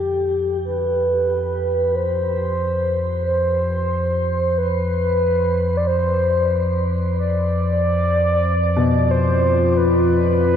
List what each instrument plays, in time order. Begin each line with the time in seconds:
Already playing: synth drone F2 F3, grand piano D3, soft synth lead G4
0.65 soft synth lead B4
1.95 soft synth lead C5
3.25 soft synth lead C5
4.58 soft synth lead B4
5.77 soft synth lead D5
5.87 soft synth lead C5
7.14 ambient pad C5, soft synth lead D5
8.06 ambient pad F4
8.76 grand piano B2
9.11 soft synth lead C5
9.77 soft synth lead B4